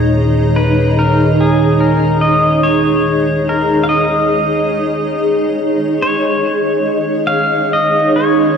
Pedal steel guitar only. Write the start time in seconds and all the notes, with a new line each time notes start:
0.56 B4
0.99 A#4
1.41 G#4
1.80 A#4
2.21 D#5
2.63 C#5
3.49 A#4
3.84 F5
3.89 D#5
6.02 C#5
7.27 F5
7.73 D#5
8.16 C#5